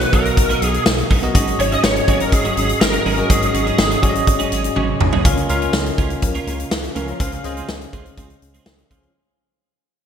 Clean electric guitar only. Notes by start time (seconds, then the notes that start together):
0.01 muted clean electric guitar stroke
0.13 F#3 B3 D#4 A#4
0.25 muted clean electric guitar stroke
0.37 muted clean electric guitar stroke
0.49 F#3 B3 D#4 A#4
0.62 F#3 B3 D#4 A#4
0.74 muted clean electric guitar stroke
0.98 muted clean electric guitar stroke
1.10 F#3 B3 D#4 A#4
1.22 muted clean electric guitar stroke
1.35 F#3 C#4 D#4 G#4
1.47 muted clean electric guitar stroke
1.59 F#3 C#4 D#4 G#4
1.71 F#3 C#4 D#4 G#4
1.84 muted clean electric guitar stroke
1.96 muted clean electric guitar stroke
2.08 F#3 C#4 D#4 G#4
2.20 muted clean electric guitar stroke
2.32 muted clean electric guitar stroke
2.44 F#3 C#4 D#4 G#4
2.57 F#3 C#4 D#4 G#4
2.69 muted clean electric guitar stroke
2.93 muted clean electric guitar stroke
3.05 F#3 C#4 D#4 G#4
3.17 muted clean electric guitar stroke
3.29 F#3 C#4 D#4 G#4
3.42 muted clean electric guitar stroke
3.53 F#3 C#4 D#4 G#4
3.66 F#3 C#4 D#4 G#4
3.78 muted clean electric guitar stroke
3.91 muted clean electric guitar stroke
4.02 F#3 C#4 D#4 G#4
4.15 muted clean electric guitar stroke
4.27 muted clean electric guitar stroke
4.39 F#3 C#4 D#4 G#4
4.51 F#3 C#4 D#4 G#4
4.64 muted clean electric guitar stroke
4.76 F#3 C#4 D#4 G#4
4.88 muted clean electric guitar stroke
5.00 muted clean electric guitar stroke
5.13 F#3 C#4 D#4 G#4
5.25 A#3 C#4 F4 A#4
5.37 muted clean electric guitar stroke
5.49 A#3 C#4 F4 A#4
5.61 A#3 C#4 F4 A#4
5.86 muted clean electric guitar stroke
5.98 A#3 C#4 F4 A#4
6.10 muted clean electric guitar stroke
6.23 muted clean electric guitar stroke
6.35 A#3 C#4 F4 A#4
6.47 A#3 C#4 F4 A#4
6.59 muted clean electric guitar stroke
6.83 muted clean electric guitar stroke
6.96 A#3 C#4 F4 A#4
7.08 muted clean electric guitar stroke
7.20 G#3 C4 F4 G#4
7.33 muted clean electric guitar stroke
7.45 G#3 C4 F4 G#4
7.57 G#3 C4 F4 G#4
7.81 muted clean electric guitar stroke
7.93 G#3 C4 F4 G#4
8.06 muted clean electric guitar stroke
8.18 G#3 C4 F4 G#4
8.30 muted clean electric guitar stroke
8.42 muted clean electric guitar stroke
8.54 G#3 C4 F4 G#4
8.78 muted clean electric guitar stroke
8.90 G#3 C4 F4 G#4
9.02 muted clean electric guitar stroke